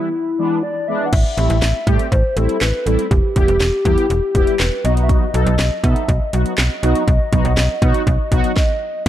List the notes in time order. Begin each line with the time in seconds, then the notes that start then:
Already playing: E4
0.38 E3 G#3 B3 D4
0.63 D5
0.88 E3 G#3 B3 D4 E5
1.06 F#5
1.13 A1 E5, kick, closed hi-hat, crash
1.38 A1 G3 A3 C4 E4, closed hi-hat
1.50 A1, closed hi-hat
1.62 A1, snare, closed hi-hat
1.87 A2 G3 A3 C4 G4, kick, closed hi-hat
1.99 closed hi-hat
2.12 A1 C5, kick, closed hi-hat
2.37 A1 G3 A3 C4 E4 A4, closed hi-hat
2.49 closed hi-hat
2.61 A1 B4, snare, clap, closed hi-hat
2.86 A1 G3 A3 C4 E4 A4, closed hi-hat
2.99 closed hi-hat
3.11 E1 G4, kick, closed hi-hat
3.36 E1 G3 B3 E4 G4, kick, closed hi-hat
3.48 E1, closed hi-hat
3.60 E1, snare, closed hi-hat
3.85 E2 G3 B3 E4 G4, kick, closed hi-hat
3.98 closed hi-hat
4.10 E1, closed hi-hat
4.35 E1 G3 B3 E4 G4, kick, closed hi-hat
4.47 closed hi-hat
4.60 E1 B4, snare, clap, closed hi-hat
4.84 B1 F#3 B3 D#4 F#4 D#5, closed hi-hat
4.97 closed hi-hat
5.03 E5
5.09 D#5, kick, closed hi-hat
5.34 B1 F#3 B3 D#4 A4, closed hi-hat
5.46 B1, closed hi-hat
5.59 B1, snare, closed hi-hat
5.84 B2 F#3 B3 D#4 A4 E5, kick, closed hi-hat
5.96 closed hi-hat
6.09 B1 D#5, kick, closed hi-hat
6.33 B1 F#3 B3 D#4 F#4, closed hi-hat
6.46 closed hi-hat
6.58 B1, snare, clap, closed hi-hat
6.83 B1 F#3 B3 D#4 F#4, closed hi-hat
6.95 closed hi-hat
7.08 B1, kick, closed hi-hat
7.32 B1 F#3 B3 D#4 F#4, kick, closed hi-hat
7.45 B1, closed hi-hat
7.57 B1, snare, closed hi-hat
7.82 B2 F#3 B3 D#4 F#4, kick, closed hi-hat
7.94 closed hi-hat
8.07 B1, kick, closed hi-hat
8.32 B1 F#3 B3 D#4 F#4, kick, closed hi-hat
8.44 closed hi-hat
8.57 D#5, kick, snare